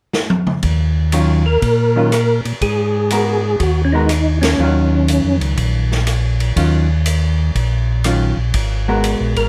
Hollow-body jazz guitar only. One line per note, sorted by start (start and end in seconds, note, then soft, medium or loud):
1.13 1.43 D#3 medium
1.13 1.43 F#3 medium
1.13 1.43 C#4 medium
1.13 1.43 F4 medium
1.96 2.10 D#3 medium
1.96 2.10 F#3 medium
1.96 2.11 C#4 medium
1.96 2.11 F4 medium
3.11 3.41 G#3 medium
3.11 3.41 B3 medium
3.11 3.41 F#4 medium
3.11 3.42 A#4 medium
3.94 4.08 G#3 medium
3.94 4.09 B3 medium
3.94 4.08 F#4 medium
3.94 4.09 A#4 medium
4.60 5.98 D#3 medium
4.60 5.98 F#3 medium
4.60 5.98 C#4 medium
4.60 5.98 F4 medium
6.56 6.86 D#3 soft
6.56 6.87 F#3 soft
6.56 6.87 C#4 medium
6.56 6.87 F4 medium
8.05 8.35 D#3 soft
8.05 8.35 F#3 soft
8.05 8.35 C#4 soft
8.05 8.35 F4 soft
8.88 9.49 G#3 medium
8.88 9.49 B3 medium
8.88 9.49 F#4 medium
8.88 9.49 A#4 medium